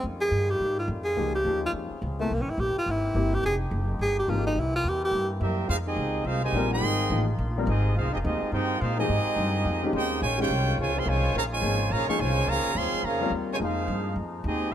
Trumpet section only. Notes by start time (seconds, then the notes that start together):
5.42 C4 G4 A#4 E5
5.69 D#4 G#4 C5 F5
5.87 C4 G4 G#4 D#5
6.26 D#4 G#4 C5 F5
6.44 D#4 G4 C5 G#5
6.73 G#4 D#5 G5 C6
7.68 C4 G4 G#4 D#5
7.97 D#4 G#4 C5 F5
8.13 C4 G4 G#4 D#5
8.25 C4 G4 G#4 D#5
8.52 D#4 G#4 C5 G5
8.80 D#4 G#4 C5 F5
8.99 C4 G4 G#4 D#5
9.94 D#4 G#4 C5 G5
10.23 F4 C5 C#5 G#5
10.41 F4 C5 C#5 G5
10.80 F4 C5 C#5 G#5
10.99 G#4 C#5 F5 C6
11.09 F4 C5 C#5 G#5
11.37 G#4 C#5 F5 A#5
11.54 F4 C5 C#5 G#5
11.92 G#4 C#5 F5 A#5
12.09 G#4 C5 F5 C#6
12.21 F4 C5 C#5 G#5
12.49 G#4 C#5 F5 A#5
12.76 G#4 C#5 F5 C6
13.05 G#4 C#5 F5 A#5
13.53 F4 C5 C#5 G#5
13.63 D#4 G#4 C5 F5
14.46 C4 G4 G#4 D#5